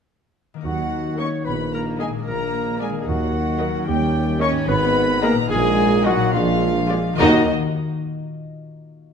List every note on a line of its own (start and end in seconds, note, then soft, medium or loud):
0.54 2.29 D#3 soft
0.54 2.12 A#3 soft
0.58 2.25 D#4 soft
0.58 2.21 A#4 soft
0.65 1.30 D#2 medium
0.65 1.15 F#3 medium
0.65 3.84 A#3 soft
0.65 2.23 D#4 soft
0.65 1.21 F#4 medium
0.65 1.16 F#5 soft
0.65 1.16 F#5 medium
1.19 1.39 A#3 soft
1.19 1.28 C#4 medium
1.19 1.39 A#4 soft
1.19 1.47 C#5 medium
1.19 1.39 D#5 soft
1.19 1.27 C#6 soft
1.19 1.25 C#6 soft
1.45 2.11 A#1 medium
1.45 1.55 B3 soft
1.45 1.73 B4 medium
1.45 1.72 B5 soft
1.45 1.53 B5 soft
1.73 2.00 A#3 medium
1.73 1.86 A#4 medium
1.73 1.81 A#5 medium
1.73 2.00 A#5 medium
2.00 2.27 G#3 medium
2.00 2.20 A#3 medium
2.00 2.12 G#4 medium
2.00 2.20 A#4 soft
2.00 2.21 D#5 medium
2.00 2.08 G#5 medium
2.00 2.07 G#5 soft
2.09 3.00 A#2 soft
2.13 2.93 A#3 soft
2.18 3.05 D4 soft
2.22 3.02 A#4 soft
2.27 2.91 A#1 medium
2.27 2.81 A#3 medium
2.27 3.06 D4 soft
2.27 2.80 A#4 medium
2.27 2.80 A#5 medium
2.80 2.89 G#3 medium
2.80 3.00 A#3 medium
2.80 3.00 G#4 medium
2.80 3.00 A#4 medium
2.80 3.01 D5 soft
2.80 3.07 G#5 medium
2.80 2.89 G#5 soft
2.89 3.68 D#3 soft
2.94 4.64 A#3 soft
2.98 3.77 D#4 soft
2.98 3.09 G#4 soft
3.03 6.34 D#4 medium
3.03 3.82 A#4 soft
3.03 3.85 F#5 medium
3.07 3.71 D#2 medium
3.07 3.86 F#3 medium
3.07 3.88 F#4 medium
3.07 3.86 F#5 medium
3.60 3.80 A#3 medium
3.60 3.80 A#4 medium
3.60 3.81 D#5 medium
3.69 4.62 D#3 medium
3.74 4.64 C#4 soft
3.78 4.58 D#4 soft
3.83 4.68 A#4 soft
3.87 4.52 D#2 medium
3.87 4.53 D#2 medium
3.87 4.42 G3 medium
3.87 4.69 C#4 medium
3.87 4.43 G4 medium
3.87 4.40 G5 medium
4.41 4.62 C#4 medium
4.41 4.69 C#4 medium
4.41 4.61 A#4 medium
4.41 4.68 C#5 medium
4.41 4.61 D#5 medium
4.41 4.47 C#6 medium
4.41 4.50 C#6 medium
4.50 5.44 G#2 medium
4.55 5.46 B3 soft
4.60 5.40 D#4 soft
4.64 5.49 B3 medium
4.64 7.19 G#4 soft
4.64 5.21 B5 medium
4.68 5.34 G#1 medium
4.68 5.23 B3 medium
4.68 5.22 B4 medium
4.68 5.22 B5 medium
5.22 5.31 A#3 medium
5.22 5.43 B3 medium
5.22 5.43 G#4 medium
5.22 5.36 A#4 medium
5.22 5.43 D#5 medium
5.22 5.28 A#5 medium
5.22 5.51 A#5 medium
5.32 6.15 A#2 medium
5.37 7.16 A#3 medium
5.41 6.32 D#4 medium
5.46 6.17 A#1 medium
5.46 6.28 F4 medium
5.46 6.07 G#5 medium
5.50 6.17 A#1 medium
5.50 6.05 G#3 medium
5.50 6.34 A#3 medium
5.50 6.05 G#4 loud
5.50 6.05 G#5 medium
6.05 6.34 F#3 medium
6.05 6.26 A#3 medium
6.05 6.26 F4 medium
6.05 6.33 F#4 loud
6.05 6.27 D#5 medium
6.05 6.35 F#5 medium
6.05 6.34 F#5 medium
6.16 7.13 A#2 medium
6.21 7.15 G#3 medium
6.25 7.17 D4 medium
6.30 7.02 A#1 medium
6.30 7.19 F4 medium
6.34 7.02 A#1 medium
6.34 7.19 F3 medium
6.34 6.91 G#3 medium
6.34 6.89 D4 medium
6.34 7.17 F4 medium
6.34 7.19 F5 medium
6.34 7.18 F5 medium
6.90 7.11 G#3 medium
6.90 7.11 F4 medium
6.90 7.12 D5 medium
7.13 7.51 D#3 medium
7.13 7.51 A#3 medium
7.18 7.51 D#2 medium
7.18 7.43 D#2 medium
7.18 7.51 D#3 medium
7.18 7.43 F#3 medium
7.18 7.50 A#3 medium
7.18 7.51 D#4 medium
7.18 7.43 D#4 medium
7.18 7.43 D#4 loud
7.18 7.50 F#4 medium
7.18 7.51 F#4 medium
7.18 7.51 D#5 medium
7.25 7.51 D#5 medium